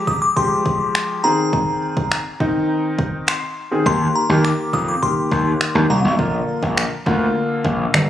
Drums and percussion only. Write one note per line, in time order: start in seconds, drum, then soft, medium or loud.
0.07 kick medium
0.37 kick medium
0.66 kick medium
0.95 finger snap loud
1.53 kick loud
1.97 kick medium
2.12 finger snap loud
2.40 kick medium
2.99 kick medium
3.28 finger snap loud
3.86 kick loud
4.45 finger snap loud
4.73 kick medium
5.03 kick medium
5.31 kick medium
5.61 finger snap loud
6.19 kick loud
6.63 kick medium
6.78 finger snap loud
7.06 kick medium
7.65 kick medium
7.94 finger snap loud